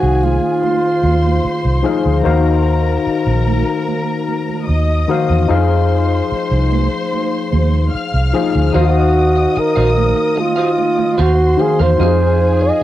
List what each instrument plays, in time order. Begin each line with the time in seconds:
Already playing: tine electric piano D#3 D#4 G#4 C5 F5, flugelhorn F#4, string section G#4 G#5
0.03 fingered electric bass C2, low conga
0.23 flugelhorn F4, muted conga, high conga
0.63 string section C5 C6, muted conga, high conga
1.03 fingered electric bass D#2, high conga
1.24 high conga
1.44 muted fingered electric bass stroke, muted conga
1.65 fingered electric bass C2
1.83 tine electric piano F3 D#4 G#4 C5 F5, high conga, low conga
2.05 fingered electric bass D2
2.23 fingered electric bass D#2, tine electric piano D#3 D#4 F#4 C5 F5, string section A#4 A#5, muted conga, low conga
3.07 muted fingered electric bass stroke
3.26 fingered electric bass A#1, low conga
3.47 high conga
3.88 muted conga, high conga
4.28 high conga
4.49 high conga
4.69 fingered electric bass D#2, string section D#5 D#6, muted conga
5.08 tine electric piano D#3 D#4 F#4 C5 F5, muted conga, high conga, low conga
5.30 fingered electric bass E2
5.48 fingered electric bass F2, tine electric piano F3 D#4 G#4 C5 F5, string section C5 C6, low conga
6.31 muted fingered electric bass stroke, muted conga
6.51 fingered electric bass C2, low conga
6.72 muted conga, high conga
7.13 high conga
7.52 fingered electric bass D#2, muted conga, high conga
7.74 high conga
7.94 string section F5 F6, muted fingered electric bass stroke
8.14 fingered electric bass C2
8.33 tine electric piano F3 D#4 G#4 C5 F5, high conga, low conga
8.55 fingered electric bass D2
8.73 fingered electric bass D#2, tine electric piano D#3 D#4 F#4 C5 F5, clean electric guitar F#4 C5 F5, string section D#5 D#6, muted conga, low conga
8.79 flugelhorn F#4
9.36 muted clean electric guitar stroke
9.56 flugelhorn A#4, muted clean electric guitar stroke, muted fingered electric bass stroke
9.76 fingered electric bass A#1, clean electric guitar F#4 C5 F5, low conga
9.96 muted clean electric guitar stroke, high conga
10.16 muted clean electric guitar stroke
10.36 flugelhorn F4, muted clean electric guitar stroke, muted conga, high conga
10.56 clean electric guitar F#4 C5 F5
10.77 muted clean electric guitar stroke, high conga
10.98 muted clean electric guitar stroke, high conga
11.18 fingered electric bass D#2, clean electric guitar F#4 C5 F5, flugelhorn F#4, string section C5 C6, muted conga
11.57 tine electric piano D#3 D#4 F#4 C5 F5, flugelhorn G#4, muted clean electric guitar stroke, muted conga, high conga, low conga
11.79 fingered electric bass E2, clean electric guitar F#4 C5 F5, flugelhorn C5
11.98 fingered electric bass F2, tine electric piano F3 D#4 F#4 C5 F5, clean electric guitar D#4 G#4 C5, string section G#4 G#5, muted conga, low conga
12.06 tine electric piano G#4
12.41 muted conga
12.61 flugelhorn D#5, muted clean electric guitar stroke